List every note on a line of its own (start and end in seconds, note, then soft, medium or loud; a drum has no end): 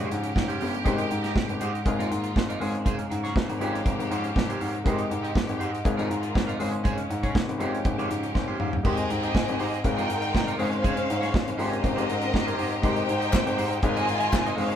0.00 1.82 C#3 medium
0.00 0.85 F3 medium
0.00 0.82 G#3 medium
0.00 0.83 C#4 medium
0.00 0.83 D#4 medium
0.00 0.83 F4 medium
0.00 0.83 G4 medium
0.00 1.84 G4 medium
0.00 0.84 C5 medium
0.00 0.84 C#5 medium
0.10 0.28 G#2 loud
0.10 muted clean electric guitar stroke soft
0.10 closed hi-hat medium
0.23 muted clean electric guitar stroke soft
0.23 closed hi-hat medium
0.36 0.53 G#2 medium
0.36 muted clean electric guitar stroke soft
0.36 kick loud
0.36 snare medium
0.48 0.59 C#4 medium
0.48 0.60 G4 medium
0.48 0.60 C5 medium
0.48 closed hi-hat soft
0.60 0.78 G1 medium
0.60 0.76 C#4 medium
0.60 0.73 G4 medium
0.60 0.73 C5 medium
0.60 open hi-hat medium
0.74 muted clean electric guitar stroke medium
0.74 closed hi-hat soft
0.84 1.03 G#1 loud
0.84 1.83 G#3 medium
0.84 1.85 G#3 medium
0.84 1.04 D#4 medium
0.84 1.83 D#4 medium
0.84 0.98 G4 medium
0.84 1.84 G4 medium
0.84 1.84 A#4 medium
0.84 0.97 C5 medium
0.84 1.84 C5 medium
0.84 kick loud
0.84 closed hi-hat medium
0.98 muted clean electric guitar stroke soft
0.98 closed hi-hat medium
1.10 1.28 G#2 medium
1.10 muted clean electric guitar stroke soft
1.10 closed hi-hat medium
1.23 1.33 D#4 soft
1.23 1.33 G4 soft
1.23 1.35 D#5 medium
1.23 snare soft
1.23 closed hi-hat soft
1.34 1.45 G#1 medium
1.34 muted clean electric guitar stroke soft
1.34 kick loud
1.34 snare loud
1.48 1.57 G#1 medium
1.48 muted clean electric guitar stroke soft
1.48 closed hi-hat soft
1.60 1.78 G#2 medium
1.60 1.80 D#4 medium
1.60 1.73 G4 medium
1.60 1.72 C5 medium
1.60 closed hi-hat medium
1.74 muted clean electric guitar stroke soft
1.74 closed hi-hat soft
1.85 1.95 G#1 medium
1.85 2.60 D#3 medium
1.85 2.58 G#3 medium
1.85 2.60 A#3 medium
1.85 2.60 F4 medium
1.85 2.59 G#4 medium
1.85 2.61 A#4 medium
1.85 2.60 C#5 medium
1.85 2.61 D#5 medium
1.85 2.61 F5 medium
1.85 muted clean electric guitar stroke soft
1.85 kick loud
1.85 closed hi-hat medium
1.99 2.07 G#1 medium
1.99 2.09 D#4 medium
1.99 2.10 F4 medium
1.99 2.10 A#4 medium
1.99 closed hi-hat soft
2.11 2.28 G#2 medium
2.11 muted clean electric guitar stroke soft
2.11 closed hi-hat medium
2.24 muted clean electric guitar stroke soft
2.24 closed hi-hat soft
2.36 2.53 G#1 medium
2.36 muted clean electric guitar stroke soft
2.36 kick loud
2.36 snare medium
2.49 2.60 D#4 medium
2.49 2.61 F4 medium
2.49 2.61 A#4 medium
2.49 closed hi-hat soft
2.60 2.95 G#1 medium
2.60 3.60 C#3 medium
2.60 3.58 G#3 medium
2.60 3.59 G#3 medium
2.60 4.83 A#3 medium
2.60 2.76 C#4 medium
2.60 3.59 G#4 medium
2.60 2.73 G#4 medium
2.60 3.59 C5 medium
2.60 2.73 C5 medium
2.60 3.59 C#5 medium
2.60 3.60 F5 medium
2.60 open hi-hat medium
2.74 muted clean electric guitar stroke soft
2.74 closed hi-hat soft
2.85 3.04 C#4 medium
2.85 2.98 G#4 medium
2.85 2.97 C5 medium
2.85 kick loud
2.85 closed hi-hat medium
2.98 muted clean electric guitar stroke medium
2.98 closed hi-hat medium
3.10 3.28 G#2 loud
3.10 muted clean electric guitar stroke soft
3.10 closed hi-hat medium
3.23 3.34 C#4 soft
3.23 3.35 G#4 medium
3.23 3.35 C#5 medium
3.23 snare soft
3.23 closed hi-hat soft
3.35 3.45 G#1 medium
3.35 muted clean electric guitar stroke soft
3.35 kick loud
3.35 snare loud
3.49 3.57 G#1 medium
3.49 muted clean electric guitar stroke soft
3.49 closed hi-hat soft
3.59 3.78 G#1 loud
3.59 5.83 C3 medium
3.59 4.84 F3 medium
3.59 4.82 G#3 medium
3.59 3.80 C#4 medium
3.59 4.82 D#4 medium
3.59 4.83 F4 medium
3.59 4.84 G4 medium
3.59 4.83 G4 medium
3.59 3.74 G4 medium
3.59 4.83 C5 medium
3.59 3.73 C5 medium
3.59 4.84 C#5 medium
3.59 closed hi-hat medium
3.74 muted clean electric guitar stroke soft
3.74 closed hi-hat soft
3.86 3.95 G#1 medium
3.86 kick loud
3.86 closed hi-hat medium
3.99 4.07 G#1 medium
3.99 muted clean electric guitar stroke soft
3.99 closed hi-hat soft
4.10 4.28 G#2 medium
4.10 4.30 C#4 medium
4.10 4.24 G4 medium
4.10 4.23 C5 medium
4.10 closed hi-hat medium
4.24 muted clean electric guitar stroke soft
4.24 closed hi-hat soft
4.36 4.53 G#1 loud
4.36 muted clean electric guitar stroke soft
4.36 kick loud
4.36 snare medium
4.49 4.59 C#4 medium
4.49 4.60 G4 medium
4.49 4.60 C5 medium
4.49 closed hi-hat medium
4.61 4.78 G#2 medium
4.61 4.76 C#4 medium
4.61 4.74 G4 medium
4.61 4.73 C5 medium
4.61 open hi-hat medium
4.74 muted clean electric guitar stroke soft
4.74 closed hi-hat soft
4.84 5.03 G#1 medium
4.84 5.83 G#3 medium
4.84 5.84 G#3 medium
4.84 5.83 D#4 medium
4.84 5.05 D#4 medium
4.84 5.84 G4 medium
4.84 5.83 G4 medium
4.84 4.99 G4 medium
4.84 5.84 A#4 medium
4.84 4.93 B4 medium
4.84 4.98 C5 medium
4.84 kick loud
4.84 closed hi-hat medium
4.93 5.87 C5 medium
4.99 muted clean electric guitar stroke soft
4.99 closed hi-hat medium
5.10 5.28 G#2 medium
5.10 muted clean electric guitar stroke medium
5.10 closed hi-hat medium
5.23 5.33 D#4 soft
5.23 5.33 G4 medium
5.23 5.35 D#5 medium
5.23 closed hi-hat soft
5.35 5.45 G#1 medium
5.35 muted clean electric guitar stroke soft
5.35 kick loud
5.35 snare loud
5.47 5.57 G#1 loud
5.47 muted clean electric guitar stroke soft
5.47 closed hi-hat soft
5.59 5.78 G#2 loud
5.59 5.79 D#4 medium
5.59 5.72 G4 medium
5.59 5.71 C5 medium
5.59 closed hi-hat medium
5.72 muted clean electric guitar stroke soft
5.72 closed hi-hat soft
5.84 5.94 G#1 loud
5.84 6.59 D#3 medium
5.84 6.58 G#3 medium
5.84 6.59 A#3 medium
5.84 6.59 F4 medium
5.84 6.58 G#4 medium
5.84 6.60 A#4 medium
5.84 6.60 C#5 medium
5.84 6.60 D#5 medium
5.84 6.60 F5 medium
5.84 muted clean electric guitar stroke soft
5.84 kick loud
5.84 closed hi-hat medium
5.97 6.07 G#1 loud
5.97 6.08 D#4 medium
5.97 6.09 F4 medium
5.97 6.09 A#4 medium
5.97 closed hi-hat soft
6.09 6.27 G#2 loud
6.09 muted clean electric guitar stroke soft
6.09 closed hi-hat medium
6.23 muted clean electric guitar stroke soft
6.23 closed hi-hat medium
6.34 6.52 G#1 loud
6.34 muted clean electric guitar stroke soft
6.34 kick loud
6.34 snare medium
6.47 6.59 D#4 medium
6.47 6.59 F4 medium
6.47 6.60 A#4 medium
6.47 closed hi-hat soft
6.59 6.94 G#1 medium
6.59 8.83 C#3 medium
6.59 7.57 G#3 medium
6.59 7.59 G#3 medium
6.59 6.75 C#4 medium
6.59 7.59 C#4 medium
6.59 7.58 G#4 medium
6.59 6.72 G#4 medium
6.59 7.58 C5 medium
6.59 6.71 C5 medium
6.59 7.58 C#5 medium
6.59 7.59 F5 medium
6.59 open hi-hat medium
6.73 muted clean electric guitar stroke soft
6.73 closed hi-hat soft
6.84 7.04 C#4 medium
6.84 6.97 G#4 medium
6.84 6.96 C5 loud
6.84 kick loud
6.84 closed hi-hat medium
6.98 muted clean electric guitar stroke medium
6.98 closed hi-hat medium
7.10 7.27 G#2 medium
7.10 muted clean electric guitar stroke soft
7.10 closed hi-hat medium
7.23 7.34 C#4 soft
7.23 7.34 G#4 medium
7.23 7.36 C#5 medium
7.23 kick medium
7.23 closed hi-hat soft
7.35 7.44 G#1 loud
7.35 muted clean electric guitar stroke soft
7.35 kick loud
7.35 snare loud
7.48 7.57 G#1 medium
7.48 muted clean electric guitar stroke soft
7.48 closed hi-hat soft
7.58 7.77 G#1 medium
7.58 8.84 F3 medium
7.58 8.81 G#3 medium
7.58 7.79 C#4 medium
7.58 8.84 C#4 medium
7.58 8.82 D#4 medium
7.58 8.82 F4 medium
7.58 8.82 G4 medium
7.58 7.73 G4 medium
7.58 8.84 G4 medium
7.58 8.33 C5 medium
7.58 7.72 C5 medium
7.58 8.34 C#5 medium
7.58 closed hi-hat medium
7.73 muted clean electric guitar stroke soft
7.73 closed hi-hat soft
7.85 7.94 G#1 medium
7.85 muted clean electric guitar stroke soft
7.85 kick loud
7.85 closed hi-hat medium
7.98 8.06 G#1 loud
7.98 8.09 C#4 medium
7.98 8.09 G4 medium
7.98 8.10 C5 medium
7.98 closed hi-hat soft
8.10 8.27 G#2 medium
8.10 muted clean electric guitar stroke soft
8.10 closed hi-hat medium
8.23 muted clean electric guitar stroke soft
8.23 closed hi-hat soft
8.34 8.52 G#1 medium
8.34 8.58 C5 medium
8.34 muted clean electric guitar stroke soft
8.34 kick medium
8.34 snare soft
8.48 8.58 C#4 medium
8.48 8.59 G4 medium
8.48 8.60 C5 medium
8.60 8.77 G#2 medium
8.60 8.75 C#4 medium
8.60 8.73 G4 medium
8.60 8.72 C5 medium
8.60 9.07 F5 medium
8.60 mid tom medium
8.73 muted clean electric guitar stroke soft
8.73 floor tom medium
8.83 9.02 G#1 medium
8.83 9.84 C3 medium
8.83 9.82 G#3 medium
8.83 9.84 G#3 medium
8.83 9.83 C4 medium
8.83 9.82 D#4 medium
8.83 9.04 D#4 medium
8.83 9.83 G4 medium
8.83 8.98 G4 medium
8.83 9.83 G#4 medium
8.83 9.83 A#4 medium
8.83 8.97 C5 medium
8.83 9.83 C5 medium
8.83 9.83 D#5 medium
8.83 9.84 G5 medium
8.83 kick loud
8.83 crash medium
8.97 muted clean electric guitar stroke soft
8.97 closed hi-hat medium
9.10 9.27 G#2 medium
9.10 muted clean electric guitar stroke soft
9.10 closed hi-hat medium
9.23 9.33 D#4 soft
9.23 9.34 G4 medium
9.23 9.35 D#5 medium
9.23 closed hi-hat soft
9.35 9.44 G#1 medium
9.35 muted clean electric guitar stroke soft
9.35 kick loud
9.35 snare loud
9.47 9.57 G#1 loud
9.47 muted clean electric guitar stroke soft
9.47 closed hi-hat soft
9.59 9.77 G#2 medium
9.59 9.78 D#4 medium
9.59 9.72 G4 medium
9.59 9.72 C5 medium
9.59 open hi-hat medium
9.73 muted clean electric guitar stroke soft
9.73 closed hi-hat soft
9.84 9.94 G#1 medium
9.84 10.59 D#3 medium
9.84 10.57 G#3 medium
9.84 10.58 A#3 medium
9.84 10.58 D#4 medium
9.84 10.59 F4 medium
9.84 10.58 G#4 medium
9.84 10.59 A#4 medium
9.84 10.58 A#4 medium
9.84 10.59 C#5 medium
9.84 10.59 D#5 medium
9.84 10.60 F5 medium
9.84 10.58 G5 medium
9.84 muted clean electric guitar stroke soft
9.84 kick medium
9.84 closed hi-hat medium
9.97 10.06 G#1 medium
9.97 10.07 D#4 medium
9.97 10.08 F4 medium
9.97 10.08 A#4 medium
9.97 closed hi-hat soft
10.09 10.27 G#2 medium
10.09 muted clean electric guitar stroke soft
10.09 closed hi-hat medium
10.22 muted clean electric guitar stroke soft
10.22 closed hi-hat soft
10.34 10.52 G#1 medium
10.34 muted clean electric guitar stroke soft
10.34 kick medium
10.34 snare medium
10.47 10.58 D#4 medium
10.47 10.58 F4 medium
10.47 10.59 A#4 medium
10.47 closed hi-hat soft
10.58 10.94 G#1 medium
10.58 11.58 C#3 medium
10.58 11.56 G#3 medium
10.58 11.58 G#3 medium
10.58 10.74 C#4 medium
10.58 11.57 C#4 medium
10.58 11.58 C#4 medium
10.58 10.71 G#4 medium
10.58 11.57 G#4 medium
10.58 11.57 C5 medium
10.58 10.70 C5 medium
10.58 11.57 C5 medium
10.58 11.58 C#5 medium
10.58 11.57 F5 medium
10.58 11.58 F5 medium
10.58 open hi-hat medium
10.71 muted clean electric guitar stroke soft
10.71 closed hi-hat soft
10.83 11.02 C#4 medium
10.83 10.96 G#4 medium
10.83 10.96 C5 medium
10.83 kick loud
10.83 closed hi-hat medium
10.97 muted clean electric guitar stroke soft
10.97 closed hi-hat medium
11.08 11.27 G#2 loud
11.08 muted clean electric guitar stroke soft
11.08 closed hi-hat medium
11.21 11.32 C#4 soft
11.21 11.32 G#4 soft
11.21 11.33 C#5 medium
11.21 snare soft
11.21 closed hi-hat soft
11.33 11.43 G#1 medium
11.33 muted clean electric guitar stroke soft
11.33 kick loud
11.33 snare loud
11.46 11.56 G#1 medium
11.46 muted clean electric guitar stroke medium
11.46 closed hi-hat soft
11.57 11.76 G#1 loud
11.57 12.83 C#3 medium
11.57 12.80 G#3 medium
11.57 12.81 C4 medium
11.57 11.77 C#4 medium
11.57 12.82 C#4 medium
11.57 12.81 D#4 medium
11.57 12.81 F4 medium
11.57 12.83 F4 medium
11.57 11.71 G4 medium
11.57 13.81 G4 medium
11.57 12.81 G4 medium
11.57 12.81 A#4 medium
11.57 11.70 C5 loud
11.57 12.82 C5 medium
11.57 12.81 D#5 medium
11.57 open hi-hat medium
11.71 muted clean electric guitar stroke soft
11.71 closed hi-hat soft
11.83 11.93 G#1 medium
11.83 muted clean electric guitar stroke soft
11.83 kick medium
11.83 closed hi-hat medium
11.96 12.06 G#1 medium
11.96 12.07 C#4 medium
11.96 12.07 G4 medium
11.96 12.07 C5 medium
11.96 closed hi-hat medium
12.10 12.26 G#2 loud
12.10 closed hi-hat medium
12.21 muted clean electric guitar stroke soft
12.21 closed hi-hat medium
12.33 12.51 G#1 loud
12.33 muted clean electric guitar stroke soft
12.33 kick medium
12.33 snare medium
12.46 12.57 C#4 medium
12.46 12.57 G4 medium
12.46 12.57 C5 medium
12.46 closed hi-hat soft
12.58 12.76 G#2 medium
12.58 12.73 C#4 medium
12.58 12.71 G4 medium
12.58 12.70 C5 medium
12.58 open hi-hat medium
12.71 muted clean electric guitar stroke soft
12.71 closed hi-hat soft
12.82 13.01 G#1 medium
12.82 13.82 C3 medium
12.82 13.80 G#3 medium
12.82 13.82 G#3 medium
12.82 13.81 D#4 medium
12.82 13.02 D#4 medium
12.82 13.81 D#4 medium
12.82 12.96 G4 medium
12.82 13.81 G4 medium
12.82 13.81 A#4 medium
12.82 12.95 C5 medium
12.82 13.81 C5 medium
12.82 13.82 C5 medium
12.82 13.81 G5 medium
12.82 kick loud
12.82 closed hi-hat medium
12.96 muted clean electric guitar stroke soft
12.96 closed hi-hat soft
13.08 13.26 G#2 medium
13.08 muted clean electric guitar stroke soft
13.08 closed hi-hat medium
13.20 13.31 D#4 soft
13.20 13.32 G4 medium
13.20 13.33 D#5 medium
13.20 closed hi-hat soft
13.33 13.42 G#1 loud
13.33 muted clean electric guitar stroke soft
13.33 kick loud
13.33 snare loud
13.33 clap loud
13.46 13.54 G#1 loud
13.46 muted clean electric guitar stroke medium
13.46 closed hi-hat soft
13.57 13.75 G#2 loud
13.57 13.77 D#4 medium
13.57 13.70 G4 medium
13.57 13.70 C5 medium
13.57 open hi-hat medium
13.71 muted clean electric guitar stroke soft
13.71 closed hi-hat soft
13.82 13.92 G#1 loud
13.82 14.57 D#3 medium
13.82 14.55 G#3 medium
13.82 14.56 A#3 medium
13.82 14.56 F4 medium
13.82 14.57 F4 medium
13.82 14.56 G#4 medium
13.82 14.58 A#4 medium
13.82 14.57 C#5 medium
13.82 14.56 D#5 medium
13.82 14.58 D#5 medium
13.82 14.58 F5 medium
13.82 14.56 G#5 medium
13.82 muted clean electric guitar stroke soft
13.82 kick loud
13.82 closed hi-hat medium
13.96 14.05 G#1 medium
13.96 14.06 F4 medium
13.96 14.07 A#4 medium
13.96 14.07 D#5 medium
13.96 closed hi-hat soft
14.09 14.26 G#2 medium
14.09 closed hi-hat medium
14.20 muted clean electric guitar stroke soft
14.20 closed hi-hat medium
14.33 14.50 G#1 loud
14.33 muted clean electric guitar stroke soft
14.33 kick loud
14.33 snare loud
14.33 clap medium
14.46 14.58 F4 medium
14.46 14.59 A#4 medium
14.46 14.65 D#5 medium
14.46 closed hi-hat soft
14.56 14.76 G#1 medium
14.56 14.76 C#3 medium
14.56 14.76 G#3 medium
14.56 14.76 A#3 medium
14.56 14.73 C#4 medium
14.56 14.76 C#4 medium
14.56 14.76 G#4 medium
14.56 14.70 G#4 medium
14.56 14.76 C5 medium
14.56 14.69 C5 medium
14.56 14.76 C#5 medium
14.56 14.76 F5 medium
14.56 open hi-hat medium
14.70 muted clean electric guitar stroke soft
14.70 closed hi-hat soft